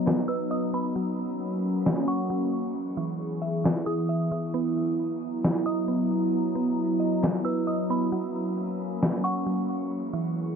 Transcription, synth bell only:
0, 0, Header, 1, 2, 480
1, 0, Start_track
1, 0, Key_signature, 5, "major"
1, 0, Tempo, 447761
1, 1025, Time_signature, 4, 2, 24, 8
1, 11316, End_track
2, 0, Start_track
2, 0, Title_t, "Synth bell"
2, 0, Program_c, 0, 98
2, 300, Note_on_c, 0, 88, 84
2, 530, Note_off_c, 0, 88, 0
2, 547, Note_on_c, 0, 87, 72
2, 774, Note_off_c, 0, 87, 0
2, 794, Note_on_c, 0, 83, 70
2, 1017, Note_off_c, 0, 83, 0
2, 2227, Note_on_c, 0, 85, 68
2, 2454, Note_off_c, 0, 85, 0
2, 4141, Note_on_c, 0, 87, 68
2, 4820, Note_off_c, 0, 87, 0
2, 6066, Note_on_c, 0, 87, 70
2, 6293, Note_off_c, 0, 87, 0
2, 7983, Note_on_c, 0, 88, 83
2, 8212, Note_off_c, 0, 88, 0
2, 8225, Note_on_c, 0, 87, 74
2, 8453, Note_off_c, 0, 87, 0
2, 8474, Note_on_c, 0, 83, 71
2, 8697, Note_off_c, 0, 83, 0
2, 9904, Note_on_c, 0, 85, 76
2, 10132, Note_off_c, 0, 85, 0
2, 11316, End_track
0, 0, End_of_file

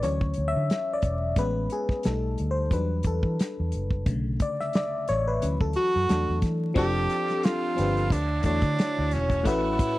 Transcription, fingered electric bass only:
0, 0, Header, 1, 2, 480
1, 0, Start_track
1, 0, Tempo, 674157
1, 970, Time_signature, 4, 2, 24, 8
1, 7111, End_track
2, 0, Start_track
2, 0, Title_t, "Fingered electric bass"
2, 0, Program_c, 0, 33
2, 27, Note_on_c, 0, 38, 94
2, 230, Note_off_c, 0, 38, 0
2, 269, Note_on_c, 0, 38, 80
2, 378, Note_off_c, 0, 38, 0
2, 401, Note_on_c, 0, 50, 99
2, 487, Note_off_c, 0, 50, 0
2, 740, Note_on_c, 0, 28, 87
2, 946, Note_off_c, 0, 28, 0
2, 980, Note_on_c, 0, 33, 99
2, 1187, Note_off_c, 0, 33, 0
2, 1466, Note_on_c, 0, 35, 99
2, 1670, Note_off_c, 0, 35, 0
2, 1707, Note_on_c, 0, 38, 99
2, 1911, Note_off_c, 0, 38, 0
2, 1938, Note_on_c, 0, 40, 96
2, 2145, Note_off_c, 0, 40, 0
2, 2176, Note_on_c, 0, 40, 85
2, 2291, Note_off_c, 0, 40, 0
2, 2309, Note_on_c, 0, 52, 99
2, 2400, Note_off_c, 0, 52, 0
2, 2560, Note_on_c, 0, 40, 84
2, 2647, Note_off_c, 0, 40, 0
2, 2667, Note_on_c, 0, 30, 86
2, 2870, Note_off_c, 0, 30, 0
2, 2900, Note_on_c, 0, 35, 94
2, 3107, Note_off_c, 0, 35, 0
2, 3628, Note_on_c, 0, 33, 93
2, 3831, Note_off_c, 0, 33, 0
2, 3866, Note_on_c, 0, 38, 98
2, 3976, Note_off_c, 0, 38, 0
2, 4000, Note_on_c, 0, 38, 89
2, 4087, Note_off_c, 0, 38, 0
2, 4241, Note_on_c, 0, 42, 77
2, 4327, Note_off_c, 0, 42, 0
2, 4346, Note_on_c, 0, 40, 93
2, 4456, Note_off_c, 0, 40, 0
2, 4481, Note_on_c, 0, 40, 92
2, 4567, Note_off_c, 0, 40, 0
2, 4580, Note_on_c, 0, 52, 87
2, 4787, Note_off_c, 0, 52, 0
2, 4820, Note_on_c, 0, 29, 112
2, 5027, Note_off_c, 0, 29, 0
2, 5547, Note_on_c, 0, 31, 105
2, 5750, Note_off_c, 0, 31, 0
2, 5778, Note_on_c, 0, 38, 92
2, 5985, Note_off_c, 0, 38, 0
2, 6017, Note_on_c, 0, 40, 102
2, 6131, Note_off_c, 0, 40, 0
2, 6147, Note_on_c, 0, 50, 96
2, 6239, Note_off_c, 0, 50, 0
2, 6398, Note_on_c, 0, 38, 106
2, 6504, Note_on_c, 0, 28, 94
2, 6515, Note_off_c, 0, 38, 0
2, 6739, Note_off_c, 0, 28, 0
2, 6739, Note_on_c, 0, 33, 117
2, 6946, Note_off_c, 0, 33, 0
2, 7111, End_track
0, 0, End_of_file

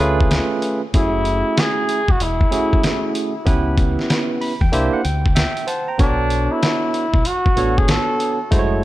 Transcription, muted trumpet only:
0, 0, Header, 1, 2, 480
1, 0, Start_track
1, 0, Tempo, 631579
1, 715, Time_signature, 4, 2, 24, 8
1, 6719, End_track
2, 0, Start_track
2, 0, Title_t, "Muted trumpet"
2, 0, Program_c, 0, 59
2, 729, Note_on_c, 0, 64, 102
2, 1215, Note_on_c, 0, 68, 104
2, 1226, Note_off_c, 0, 64, 0
2, 1604, Note_on_c, 0, 66, 86
2, 1615, Note_off_c, 0, 68, 0
2, 1694, Note_on_c, 0, 64, 85
2, 1706, Note_off_c, 0, 66, 0
2, 2405, Note_off_c, 0, 64, 0
2, 4560, Note_on_c, 0, 62, 92
2, 4955, Note_on_c, 0, 64, 79
2, 4967, Note_off_c, 0, 62, 0
2, 5525, Note_on_c, 0, 66, 98
2, 5536, Note_off_c, 0, 64, 0
2, 5914, Note_on_c, 0, 68, 91
2, 5925, Note_off_c, 0, 66, 0
2, 6009, Note_on_c, 0, 69, 94
2, 6020, Note_off_c, 0, 68, 0
2, 6395, Note_off_c, 0, 69, 0
2, 6719, End_track
0, 0, End_of_file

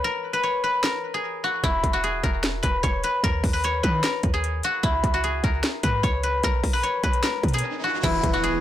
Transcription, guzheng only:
0, 0, Header, 1, 2, 480
1, 0, Start_track
1, 0, Tempo, 400000
1, 43, Time_signature, 4, 2, 24, 8
1, 10326, End_track
2, 0, Start_track
2, 0, Title_t, "Guzheng"
2, 0, Program_c, 0, 107
2, 0, Note_on_c, 0, 64, 97
2, 0, Note_on_c, 0, 66, 82
2, 0, Note_on_c, 0, 68, 82
2, 0, Note_on_c, 0, 71, 72
2, 0, Note_on_c, 0, 73, 92
2, 51, Note_on_c, 0, 70, 102
2, 123, Note_off_c, 0, 71, 0
2, 400, Note_on_c, 0, 71, 87
2, 472, Note_off_c, 0, 70, 0
2, 516, Note_off_c, 0, 73, 0
2, 521, Note_on_c, 0, 73, 79
2, 759, Note_off_c, 0, 71, 0
2, 764, Note_on_c, 0, 71, 83
2, 1005, Note_on_c, 0, 70, 92
2, 1077, Note_off_c, 0, 71, 0
2, 1249, Note_off_c, 0, 64, 0
2, 1333, Note_off_c, 0, 68, 0
2, 1369, Note_on_c, 0, 68, 79
2, 1410, Note_off_c, 0, 66, 0
2, 1726, Note_on_c, 0, 66, 88
2, 1964, Note_on_c, 0, 64, 97
2, 2315, Note_off_c, 0, 66, 0
2, 2319, Note_on_c, 0, 66, 87
2, 2439, Note_off_c, 0, 68, 0
2, 2444, Note_on_c, 0, 68, 80
2, 2676, Note_off_c, 0, 70, 0
2, 2681, Note_on_c, 0, 70, 76
2, 2815, Note_off_c, 0, 73, 0
2, 3152, Note_on_c, 0, 71, 75
2, 3224, Note_off_c, 0, 70, 0
2, 3397, Note_on_c, 0, 73, 87
2, 3642, Note_off_c, 0, 71, 0
2, 3647, Note_on_c, 0, 71, 74
2, 3884, Note_on_c, 0, 70, 112
2, 3956, Note_off_c, 0, 71, 0
2, 4240, Note_on_c, 0, 71, 81
2, 4312, Note_off_c, 0, 70, 0
2, 4367, Note_off_c, 0, 73, 0
2, 4372, Note_on_c, 0, 73, 93
2, 4595, Note_off_c, 0, 71, 0
2, 4600, Note_on_c, 0, 71, 89
2, 4847, Note_on_c, 0, 70, 88
2, 4919, Note_off_c, 0, 71, 0
2, 5098, Note_off_c, 0, 64, 0
2, 5172, Note_off_c, 0, 68, 0
2, 5203, Note_on_c, 0, 68, 84
2, 5244, Note_off_c, 0, 66, 0
2, 5573, Note_on_c, 0, 66, 85
2, 5798, Note_on_c, 0, 64, 93
2, 6160, Note_off_c, 0, 66, 0
2, 6165, Note_on_c, 0, 66, 85
2, 6281, Note_off_c, 0, 68, 0
2, 6286, Note_on_c, 0, 68, 81
2, 6519, Note_off_c, 0, 70, 0
2, 6524, Note_on_c, 0, 70, 77
2, 6666, Note_off_c, 0, 73, 0
2, 7000, Note_on_c, 0, 71, 75
2, 7072, Note_off_c, 0, 70, 0
2, 7240, Note_on_c, 0, 73, 90
2, 7477, Note_off_c, 0, 71, 0
2, 7482, Note_on_c, 0, 71, 70
2, 7730, Note_on_c, 0, 70, 111
2, 7802, Note_off_c, 0, 71, 0
2, 8080, Note_on_c, 0, 71, 87
2, 8152, Note_off_c, 0, 70, 0
2, 8195, Note_off_c, 0, 73, 0
2, 8199, Note_on_c, 0, 73, 82
2, 8437, Note_off_c, 0, 71, 0
2, 8442, Note_on_c, 0, 71, 81
2, 8685, Note_on_c, 0, 70, 92
2, 8757, Note_off_c, 0, 71, 0
2, 8932, Note_off_c, 0, 64, 0
2, 9014, Note_off_c, 0, 68, 0
2, 9048, Note_on_c, 0, 68, 80
2, 9089, Note_off_c, 0, 66, 0
2, 9405, Note_on_c, 0, 66, 83
2, 9645, Note_on_c, 0, 64, 101
2, 9996, Note_off_c, 0, 66, 0
2, 10001, Note_on_c, 0, 66, 91
2, 10118, Note_off_c, 0, 68, 0
2, 10123, Note_on_c, 0, 68, 83
2, 10326, Note_off_c, 0, 64, 0
2, 10326, Note_off_c, 0, 66, 0
2, 10326, Note_off_c, 0, 68, 0
2, 10326, Note_off_c, 0, 70, 0
2, 10326, Note_off_c, 0, 73, 0
2, 10326, End_track
0, 0, End_of_file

